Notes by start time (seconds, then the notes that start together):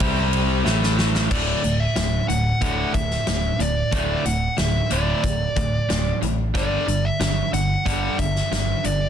0.00 C2 C3 G3 C4 G4 D5, kick, ride
0.33 ride
0.64 A1 A2 E3 A3 E4 B4, snare
0.83 snare
0.99 snare
1.15 snare
1.30 D1 D2 A2 D3 D5, kick, crash
1.63 D1 D2 A2, closed hi-hat
1.80 E5
1.96 D1 D2 A2, snare, closed hi-hat
2.28 D1 D2 A2 F#5, closed hi-hat
2.61 D1 D2 A2 D3, kick, closed hi-hat
2.93 D1 D2 A2 E5, kick, closed hi-hat
3.11 snare
3.27 D1 D2 A2, snare, closed hi-hat
3.59 D1 D2 A2 D5, closed hi-hat
3.91 D1 D2 A2 D3, kick, closed hi-hat
4.25 D1 D2 A2 F#5, closed hi-hat
4.57 D1 D2 A2 E5, snare, closed hi-hat
4.90 D1 D2 A2 D3 D5, closed hi-hat
5.23 D1 D2 A2, kick, closed hi-hat
5.56 D1 D2 A2, kick, closed hi-hat
5.89 D1 D2 A2, snare, closed hi-hat
6.22 A1 D2 A2, closed hi-hat
6.54 G1 G2 D3 G3 D5, kick, closed hi-hat
6.87 G1 G2 D3, closed hi-hat
7.05 E5
7.20 G1 G2 D3, snare, closed hi-hat
7.53 G1 G2 D3 F#5, closed hi-hat
7.86 G1 G2 D3 G3, kick, closed hi-hat
8.19 G1 G2 D3 E5, kick, closed hi-hat
8.36 snare
8.52 G1 G2 D3, snare, closed hi-hat
8.84 G1 G2 D3 D5, closed hi-hat